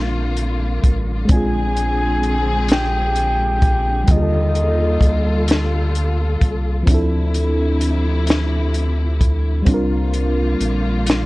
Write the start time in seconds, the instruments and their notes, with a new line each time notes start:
Already playing: analog synth bass A#1, string section D3 A#3 F4, fm electric piano G3 C4 D4 F4 A#4, soft synth lead F5
0.37 closed hi-hat
0.84 analog synth bass A1, kick, closed hi-hat
1.25 fm electric piano G#3 C4
1.29 analog synth bass A#1, string section G#3 C4 G#4, fm electric piano D4, soft synth lead G#5, kick, closed hi-hat
1.34 fm electric piano F4 G#4
1.76 closed hi-hat
2.23 closed hi-hat
2.68 soft synth lead G5, snare, closed hi-hat
3.15 closed hi-hat
3.62 kick, closed hi-hat
4.04 fm electric piano G3 A#3, closed hi-hat
4.08 analog synth bass D#2, fm electric piano D3, string section G3 F4 A4, soft synth lead D#5, kick
4.12 fm electric piano F4 G#4
4.22 fm electric piano A4
4.55 closed hi-hat
5.01 analog synth bass D2, kick, closed hi-hat
5.48 snare, closed hi-hat
5.95 closed hi-hat
6.42 analog synth bass C2, kick, closed hi-hat
6.83 string section C3 F3 E4, fm electric piano F3 C4
6.87 analog synth bass D2, fm electric piano D4, kick, closed hi-hat
6.92 fm electric piano E4 A4
7.34 closed hi-hat
7.81 closed hi-hat
8.27 snare, closed hi-hat
8.74 closed hi-hat
9.21 kick, closed hi-hat
9.62 fm electric piano G3 C4
9.66 analog synth bass C2, string section D3 A#3 F4, fm electric piano D4, kick, closed hi-hat
9.71 fm electric piano F4 A#4
10.14 closed hi-hat
10.60 analog synth bass A#1, closed hi-hat
11.06 snare, closed hi-hat